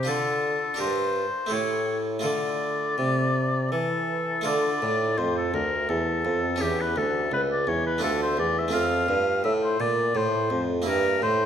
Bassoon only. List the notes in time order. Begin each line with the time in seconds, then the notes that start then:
Already playing: C3
0.09 D3
0.80 G2
1.51 A2
2.24 D3
2.99 C3
3.72 E3
4.46 D3
4.82 A2
5.18 F2
5.54 D2
5.89 E2
6.25 F2
6.60 E2
6.97 D2
7.32 C#2
7.67 E2
8.03 D2
8.39 E2
8.74 F2
9.09 G2
9.45 A2
9.80 A#2
10.15 A2
10.51 F2
10.87 G2
11.22 A2